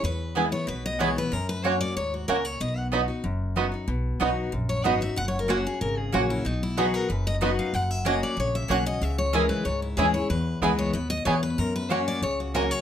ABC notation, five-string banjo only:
X:1
M:4/4
L:1/8
Q:1/4=187
K:B
V:1 name="Five-string banjo"
z2 [B,EG] z3 [B,EG] z | z2 [CF] z3 [CF] z | z2 [B,DF] z3 [B,DF] z | z2 [B,DF] z3 [B,DF] z |
z2 [CF] z3 [CF] z | z2 [B,DF] z3 [B,DF] z | z2 [CF] z3 [CF] z | z2 [CEG] z3 [CEG] z |
z2 [B,EG] z3 [B,EG] z | z2 [CF] z3 [CF] z |]